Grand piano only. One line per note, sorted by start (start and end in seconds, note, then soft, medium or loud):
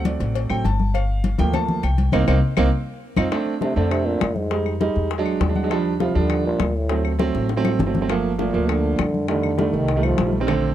0.00 0.48 F#3 medium
0.00 0.48 A3 medium
0.00 0.49 C4 medium
0.06 0.47 D5 medium
0.50 0.63 F#3 medium
0.50 0.63 A3 medium
0.50 0.64 C4 medium
0.50 0.64 G5 loud
0.65 0.92 A5 medium
0.94 1.36 F5 medium
1.38 1.81 F3 medium
1.38 1.81 A3 medium
1.38 1.82 A#3 medium
1.38 1.54 G5 loud
1.55 1.82 A5 loud
1.84 2.11 G5 medium
2.13 2.22 A#3 loud
2.13 2.23 C4 loud
2.13 2.23 D#4 loud
2.28 2.37 A#3 loud
2.28 2.37 C4 loud
2.28 2.37 D#4 loud
2.57 2.67 A#3 loud
2.57 2.67 C4 loud
2.57 2.67 D#4 loud
3.17 3.27 C4 loud
3.17 3.26 D#4 loud
3.17 3.27 F4 medium
3.31 3.53 A3 medium
3.31 3.53 C4 medium
3.31 3.53 D4 loud
3.61 3.72 A3 medium
3.61 3.72 C4 medium
3.61 3.72 D4 medium
3.76 4.18 A3 medium
3.76 4.18 C4 medium
3.76 4.19 D4 loud
4.50 4.72 G3 medium
4.50 4.72 G#3 medium
4.50 4.72 D#4 medium
4.80 5.07 G3 medium
4.80 5.07 G#3 medium
4.80 5.07 D#4 loud
5.18 5.39 F#3 loud
5.18 5.39 G#3 medium
5.18 5.40 D4 loud
5.41 5.55 D5 medium
5.48 5.59 F#3 medium
5.48 5.59 G#3 medium
5.48 5.59 D4 medium
5.56 5.70 F#5 medium
5.63 5.68 F#3 medium
5.63 5.69 G#3 medium
5.63 5.69 D4 medium
5.70 5.91 F3 medium
5.70 5.92 G3 medium
5.70 5.92 D4 loud
6.00 6.11 F3 medium
6.00 6.11 G3 medium
6.00 6.11 F4 medium
6.15 6.57 F3 medium
6.15 6.57 G3 medium
6.15 6.57 D4 loud
6.89 7.11 F#3 medium
6.89 7.11 A3 medium
6.89 7.11 C4 medium
7.19 7.45 F#3 loud
7.19 7.46 A3 medium
7.19 7.46 C4 loud
7.56 7.78 F#3 medium
7.56 7.78 A3 medium
7.56 7.78 C4 loud
7.86 7.97 F#3 medium
7.86 7.97 A3 medium
7.86 7.97 C4 medium
8.01 8.07 F#3 medium
8.01 8.07 A3 medium
8.01 8.07 C4 medium
8.09 8.30 F3 medium
8.09 8.30 A3 medium
8.09 8.31 A#3 loud
8.38 8.49 F3 medium
8.38 8.49 A3 medium
8.38 8.50 A#3 medium
8.53 8.95 F3 medium
8.53 8.96 A3 medium
8.53 8.96 A#3 medium
9.28 9.49 D#3 medium
9.28 9.50 G3 medium
9.28 9.50 A3 medium
9.58 9.84 D#3 medium
9.58 9.85 G3 medium
9.58 9.85 A3 medium
9.96 10.17 D#3 medium
9.96 10.17 G3 medium
9.96 10.17 A3 medium
10.26 10.36 D#3 medium
10.26 10.36 G3 medium
10.26 10.36 A3 medium
10.40 10.45 D#3 medium
10.40 10.46 G3 medium
10.40 10.46 C4 loud
10.47 10.68 D3 loud
10.47 10.69 A3 medium
10.47 10.69 C4 loud